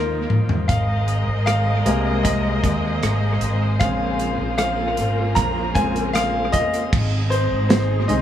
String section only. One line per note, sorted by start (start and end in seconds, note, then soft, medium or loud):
0.00 0.66 A#3 soft
0.00 0.66 D#4 soft
0.00 0.65 F4 medium
0.69 3.78 G#3 soft
0.69 6.88 G#4 soft
0.69 3.78 A#4 medium
0.69 6.88 C5 soft
0.69 3.78 D#5 medium
3.81 6.90 A#3 medium
3.81 6.89 F4 medium
3.81 6.90 A#4 medium
6.93 8.22 C4 medium
6.93 8.22 D#4 medium
6.93 8.22 G#4 medium